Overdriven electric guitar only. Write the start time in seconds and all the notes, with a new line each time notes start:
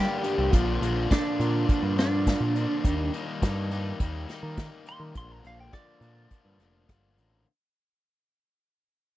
Already playing: G2 D3 G3 A#3 D4
0.24 G2 D3 G3 A#3 D4
0.52 A#2 D3 F3 A#3 D4
0.81 A#2 D3 F3 A#3 D4
1.10 A#2 D3 F3 A#3 D4
1.39 A#2 D3 F3 A#3 D4
1.68 A#2 D3 F3 A#3 D4
1.97 A#2 D3 F3 A#3 D4
2.26 A#2 D3 F3 A#3 D4
2.55 A#2 D3 F3 A#3 D4
2.84 D#3 G3 A#3 D#4
3.13 D#3 G3 A#3 D#4
3.42 D#3 G3 A#3 D#4
3.71 D#3 G3 A#3 D#4
4.01 D#3 G3 A#3 D#4
4.28 D#3 G3 A#3 D#4
4.57 D#3 G3 A#3 D#4
4.85 D#3 G3 A#3 D#4
5.14 A#2 D3 F3 A#3 D4
5.44 A#2 D3 F3 A#3 D4
5.72 A#2 D3 F3 A#3 D4
6.01 A#2 D3 F3 A#3 D4
6.30 A#2 D3 F3 A#3 D4
6.59 A#2 D3 F3 A#3 D4
6.88 A#2 D3 F3 A#3 D4
7.17 A#2 D3 F3 A#3 D4